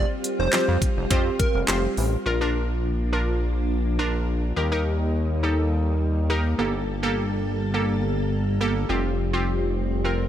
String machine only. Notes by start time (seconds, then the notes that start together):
Already playing: G3 C4 F4
2.26 F3 A#3 D4
4.57 G3 D#4
6.59 G3 A4
8.90 F3 G3 C4